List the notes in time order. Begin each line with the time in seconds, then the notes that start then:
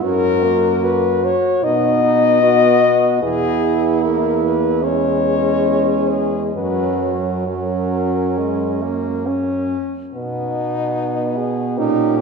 0.03 F#2 C#4 F#4 A#4
0.43 A#3
0.83 F#4 B4
1.25 C#5
1.64 B2 B3 D#4 D#5
2.04 D#4
2.42 B3 F#4
3.23 E2 B3 E4 G#4
4.05 A#3 A#4
4.45 B4
4.84 G#3 C#4 C#5
6.10 G#4
6.55 F#2 F#3 C#4 B4
7.47 F#3 C#4 A#4
8.38 G#3
8.82 A#3
9.26 C#4
10.14 B2 B3 D#4
11.37 G#4
11.78 A#2 C#4 D#4 G4
12.18 C#4